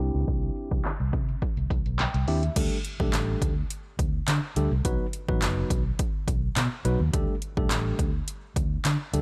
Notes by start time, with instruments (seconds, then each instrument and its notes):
0.00 tine electric piano C4 D4 E4 G4
0.14 fingered electric bass C#2, closed hi-hat
0.28 kick, closed hi-hat
0.43 closed hi-hat
0.56 closed hi-hat
0.71 fingered electric bass C2, kick, closed hi-hat
0.85 snare, clap, closed hi-hat
1.00 fingered electric bass C2, closed hi-hat
1.13 fingered electric bass C3, kick, closed hi-hat
1.29 closed hi-hat
1.42 kick, closed hi-hat
1.57 fingered electric bass C2, closed hi-hat
1.70 fingered electric bass C2, kick, closed hi-hat
1.86 fingered electric bass B1, closed hi-hat
1.99 tine electric piano G5, snare, clap, closed hi-hat
2.14 fingered electric bass C2, closed hi-hat
2.28 fingered electric bass D#2, tine electric piano C4 D4 E4 G4 E5, open hi-hat
2.43 closed hi-hat
2.56 fingered electric bass D2, tine electric piano G3 A3 D4 G4 A4, kick, closed hi-hat, crash
2.85 closed hi-hat
3.00 fingered electric bass B1, tine electric piano G3 A3 D4 G4 A4, kick
3.13 fingered electric bass A1, snare, clap, closed hi-hat
3.42 fingered electric bass D2, kick, closed hi-hat
3.70 closed hi-hat
3.99 fingered electric bass D2, kick, closed hi-hat
4.28 fingered electric bass D3, snare, clap, closed hi-hat
4.56 fingered electric bass D2, tine electric piano G3 A3 D4 G4 A4, closed hi-hat
4.72 fingered electric bass C2
4.85 tine electric piano F#3 B3 D#4 F#4 B4, kick, closed hi-hat
5.13 closed hi-hat
5.28 fingered electric bass A1, tine electric piano F#3 B3 D#4 F#4 B4, kick
5.42 fingered electric bass F#1, snare, clap, closed hi-hat
5.70 fingered electric bass B1, kick, closed hi-hat
5.99 kick, closed hi-hat
6.28 fingered electric bass B1, kick, closed hi-hat
6.56 fingered electric bass B2, snare, clap, closed hi-hat
6.85 fingered electric bass B1, tine electric piano F#3 B3 D#4 F#4 B4, closed hi-hat
7.00 fingered electric bass D#2
7.13 fingered electric bass D2, tine electric piano G3 A3 D4 G4 A4, kick, closed hi-hat
7.42 closed hi-hat
7.57 fingered electric bass B1, tine electric piano G3 A3 D4 G4 A4, kick
7.71 fingered electric bass A1, snare, clap, closed hi-hat
7.99 fingered electric bass D2, kick, closed hi-hat
8.28 closed hi-hat
8.56 fingered electric bass D2, kick, closed hi-hat
8.85 fingered electric bass D3, snare, clap, closed hi-hat
9.13 fingered electric bass D2, tine electric piano G3 A3 D4 G4 A4, closed hi-hat